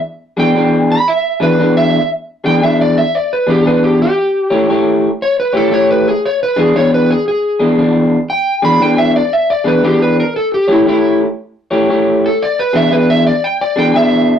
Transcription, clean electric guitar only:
X:1
M:4/4
L:1/8
Q:"Swing" 1/4=116
K:Emix
V:1 name="Clean electric guitar"
z [E,B,DG] [E,B,DG] z2 [E,B,DG] [E,B,DG] z | z [E,B,DG] [E,B,DG] z2 [E,B,DG] [E,B,DG] z | z [A,E=Gc] [A,EGc] z2 [A,EGc] [A,EGc] z | z [E,B,DG] [E,B,DG] z2 [E,B,DG] [E,B,DG] z |
z [E,B,DG] [E,B,DG] z2 [E,B,DG] [E,B,DG] z | z [A,E=Gc] [A,EGc] z2 [A,EGc] [A,EGc] z | z [E,B,DG] [E,B,DG] z2 [E,B,DG] [E,B,DG] z |]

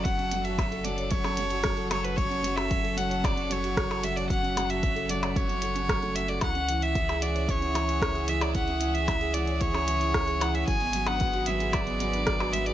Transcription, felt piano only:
X:1
M:4/4
L:1/16
Q:1/4=113
K:F#m
V:1 name="Felt piano"
F, C F, F F, A F, c F, C F, F F, A F, c | F, C F, F F, A F, c F, C F, F z A F, c | F, C F, F F, A F, c F, C A C F, A, F A | E, C E, E E, G E, c E, C E, E z G E, c |
E, C E, z E, G E, c E, C E, E z G E, c | F, B, F, D F, F F, G F, B, F, D F, F F, G |]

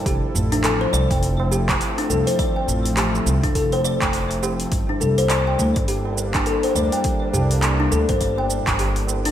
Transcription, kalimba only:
X:1
M:4/4
L:1/16
Q:"Swing 16ths" 1/4=103
K:Gdor
V:1 name="Kalimba"
G z2 D A c d g z2 G z2 D A c | d g z2 G z2 D A c d g z2 G z | z D A c d g z2 G z2 D A c d g | z2 G z2 D A c d g z2 G z2 D |]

